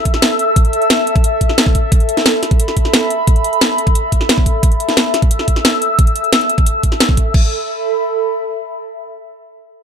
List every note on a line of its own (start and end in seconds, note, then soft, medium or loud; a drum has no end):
0.00 7.33 A4 medium
0.00 7.34 E5 loud
0.00 2.02 E6 medium
0.05 kick medium
0.05 closed hi-hat medium
0.14 snare soft
0.22 snare loud
0.22 closed hi-hat medium
0.39 closed hi-hat medium
0.56 kick loud
0.56 closed hi-hat medium
0.65 closed hi-hat soft
0.73 closed hi-hat medium
0.82 closed hi-hat soft
0.90 snare loud
0.90 closed hi-hat medium
1.07 closed hi-hat medium
1.16 kick loud
1.16 closed hi-hat soft
1.24 closed hi-hat medium
1.41 kick medium
1.41 closed hi-hat medium
1.49 snare soft
1.58 snare loud
1.58 closed hi-hat medium
1.66 kick loud
1.75 kick medium
1.75 closed hi-hat medium
1.92 kick loud
1.92 closed hi-hat medium
2.00 4.73 B5 medium
2.00 closed hi-hat soft
2.09 closed hi-hat medium
2.17 snare soft
2.17 closed hi-hat soft
2.26 snare loud
2.26 closed hi-hat medium
2.43 snare soft
2.43 closed hi-hat medium
2.51 kick loud
2.51 closed hi-hat soft
2.60 closed hi-hat medium
2.68 snare soft
2.77 kick medium
2.77 closed hi-hat medium
2.85 snare soft
2.94 snare loud
2.94 closed hi-hat medium
3.10 closed hi-hat medium
3.27 kick loud
3.27 closed hi-hat medium
3.36 closed hi-hat soft
3.44 closed hi-hat medium
3.53 closed hi-hat soft
3.61 snare loud
3.61 closed hi-hat medium
3.78 closed hi-hat medium
3.87 kick loud
3.87 closed hi-hat soft
3.95 closed hi-hat medium
4.12 kick medium
4.12 closed hi-hat medium
4.21 snare soft
4.29 snare loud
4.29 closed hi-hat medium
4.38 kick loud
4.46 kick medium
4.46 closed hi-hat medium
4.63 kick loud
4.63 closed hi-hat loud
4.71 7.36 E6 medium
4.71 closed hi-hat soft
4.80 closed hi-hat medium
4.89 snare soft
4.89 closed hi-hat soft
4.97 snare loud
4.97 closed hi-hat medium
5.14 snare soft
5.14 closed hi-hat medium
5.22 kick loud
5.22 closed hi-hat soft
5.31 closed hi-hat medium
5.39 snare soft
5.48 kick medium
5.48 closed hi-hat medium
5.56 snare soft
5.65 snare loud
5.65 closed hi-hat medium
5.82 closed hi-hat medium
5.99 kick loud
5.99 closed hi-hat loud
6.07 closed hi-hat soft
6.16 closed hi-hat medium
6.24 closed hi-hat soft
6.33 snare loud
6.33 closed hi-hat loud
6.41 closed hi-hat soft
6.50 closed hi-hat medium
6.58 kick loud
6.58 closed hi-hat soft
6.66 closed hi-hat medium
6.83 kick medium
6.83 closed hi-hat medium
6.92 snare soft
7.00 snare loud
7.00 closed hi-hat loud
7.09 kick loud
7.17 kick medium
7.17 closed hi-hat medium
7.34 8.66 A4 medium
7.34 kick loud
7.34 crash medium
7.39 8.66 E5 medium
7.44 8.66 B5 medium